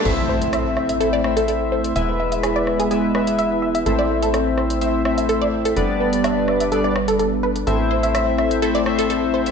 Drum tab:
CC |x---------------|----------------|----------------|----------------|
HH |x--xx--xx--xx--x|x--xx--xx--xx--x|x--xx--xx--xx--x|x--xx--xx--xx--x|
SD |----r-r---r-----|----r-r---r-----|----r-r---r-----|----r-r---r-----|

CC |----------------|
HH |x--xx--xx--xx--x|
SD |----r-r---r-----|